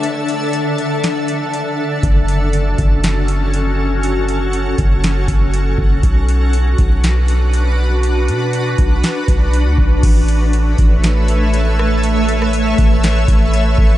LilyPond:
<<
  \new Staff \with { instrumentName = "Ambient pad" } { \time 4/4 \key a \major \tempo 4 = 120 << { <d d' a' e'' a''>1 | cis'1~ | cis'1 | <d' b'>1~ |
<d' b'>1 | <a a' b' e''>1~ | <a a' b' e''>1 | } \\ { r1 | fis'1~ | fis'1~ | fis'1~ |
fis'1 | cis''1~ | cis''1 | } >> }
  \new Staff \with { instrumentName = "808-style bass" } { \clef bass \time 4/4 \key a \major r1 | fis,,4. fis,,2~ fis,,8~ | fis,,4. fis,,4 fis,,4 fis,,8 | b,,4. b,,2~ b,,8~ |
b,,8 b,4 b,,8 r8 b,,8. d,16 b,,8 | a,,4. a,,2~ a,,8~ | a,,4. a,,4 a,,4 a,,8 | }
  \new DrumStaff \with { instrumentName = "Drums" } \drummode { \time 4/4 hh8 hh8 hh8 hh8 <hh sn>8 hh8 hh4 | <hh bd>8 hh8 hh8 <hh bd>8 <hh sn>8 hh8 hh4 | hh8 hh8 hh8 <hh bd>8 <hh sn>8 <hh bd>8 hh8 bd8 | <hh bd>8 hh8 hh8 <hh bd>8 <hh sn>8 hh8 hh4 |
hh8 hh8 hh8 <hh bd>8 <hh sn>8 <hh bd>8 hh8 bd8 | <cymc hh bd>8 hh8 hh8 <hh bd>8 <hh sn>8 hh8 hh8 ss8 | hh8 hh16 ss16 hh8 <hh bd>8 <hh sn>8 <hh bd>8 hh8 bd8 | }
>>